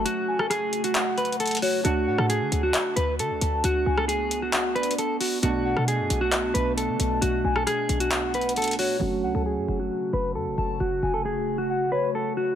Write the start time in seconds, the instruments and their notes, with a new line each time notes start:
Already playing: ambient pad C#3 A3 F#4, felt piano F#3 A3 C#4
0.05 clean electric guitar F#4, closed hi-hat
0.28 soft synth lead G#5
0.39 clean electric guitar A4, cross-stick
0.50 clean electric guitar G#4, cross-stick, closed hi-hat
0.73 closed hi-hat
0.84 clean electric guitar F#4, closed hi-hat
0.95 soft synth lead F#5, clap, closed hi-hat
1.18 clean electric guitar B4, closed hi-hat
1.25 closed hi-hat
1.32 closed hi-hat
1.40 clean electric guitar A4, closed hi-hat
1.46 closed hi-hat
1.47 closed hi-hat
1.51 closed hi-hat
1.55 closed hi-hat
1.57 closed hi-hat
1.62 clean electric guitar F#4, soft synth lead C#5, open hi-hat
1.83 808-style bass D2, felt piano A3 D4 F#4, ambient pad D4, clean electric guitar F#4, closed hi-hat
2.07 808-style bass A2, soft synth lead F#5
2.18 808-style bass A2, clean electric guitar A4, cross-stick
2.29 clean electric guitar G#4, closed hi-hat
2.41 808-style bass D3
2.52 808-style bass D2, closed hi-hat
2.63 clean electric guitar F#4
2.74 clap, closed hi-hat
2.96 808-style bass D2, clean electric guitar B4, closed hi-hat
3.19 808-style bass D3, clean electric guitar A4, closed hi-hat
3.30 808-style bass D2
3.41 808-style bass D2, soft synth lead A5, closed hi-hat
3.64 808-style bass D2, ambient pad B3, clean electric guitar F#4, closed hi-hat
3.86 808-style bass C#2, soft synth lead G#5
3.98 clean electric guitar A4, cross-stick
4.08 clean electric guitar G#4, closed hi-hat
4.31 closed hi-hat
4.42 clean electric guitar F#4
4.53 soft synth lead F#5, clap, closed hi-hat
4.75 clean electric guitar B4, soft synth lead D5, closed hi-hat
4.83 808-style bass F2, closed hi-hat
4.91 closed hi-hat
4.98 clean electric guitar A4, closed hi-hat
5.04 808-style bass C#2
5.21 clean electric guitar F#4, open hi-hat
5.42 808-style bass B1, felt piano B2 A3 D4, ambient pad B2 A3 D4, clean electric guitar F#4, closed hi-hat
5.65 soft synth lead F#5
5.77 808-style bass B2, clean electric guitar A4, cross-stick
5.88 clean electric guitar G#4, closed hi-hat
5.99 808-style bass F#2
6.10 808-style bass B1, closed hi-hat
6.21 clean electric guitar F#4
6.32 clap, closed hi-hat
6.54 808-style bass B1, clean electric guitar B4, closed hi-hat
6.77 clean electric guitar A4, closed hi-hat
6.88 808-style bass D3
7.00 808-style bass B1, soft synth lead A5, closed hi-hat
7.22 808-style bass B1, clean electric guitar F#4, closed hi-hat
7.44 808-style bass B1, soft synth lead G#5
7.56 clean electric guitar A4, cross-stick
7.67 clean electric guitar G#4, cross-stick, closed hi-hat
7.89 808-style bass B1, closed hi-hat
8.00 clean electric guitar F#4, closed hi-hat
8.11 soft synth lead F#5, clap, closed hi-hat
8.34 clean electric guitar B4, closed hi-hat
8.41 closed hi-hat
8.49 closed hi-hat
8.56 clean electric guitar A4, closed hi-hat
8.62 closed hi-hat
8.64 closed hi-hat
8.68 closed hi-hat
8.71 closed hi-hat
8.73 closed hi-hat
8.79 clean electric guitar F#4, soft synth lead C#5, open hi-hat
8.99 808-style bass F#1, ambient pad C#3 A3 F#4, felt piano F#3 A3 C#4, clean electric guitar F#4
9.24 808-style bass C#2, soft synth lead F#5
9.35 808-style bass C#2, clean electric guitar A4
9.46 clean electric guitar G#4
9.57 808-style bass F#2
9.68 808-style bass F#1
9.80 clean electric guitar F#4
10.13 808-style bass F#1, clean electric guitar B4
10.35 808-style bass F#2, clean electric guitar A4
10.47 808-style bass F#1
10.58 808-style bass F#1, soft synth lead A5
10.80 808-style bass F#1, clean electric guitar F#4
11.03 808-style bass F1, soft synth lead G#5
11.14 clean electric guitar A4
11.25 clean electric guitar G#4
11.58 clean electric guitar F#4
11.70 soft synth lead F#5
11.92 clean electric guitar B4, soft synth lead C#5
12.03 808-style bass G#1
12.15 clean electric guitar A4
12.37 clean electric guitar F#4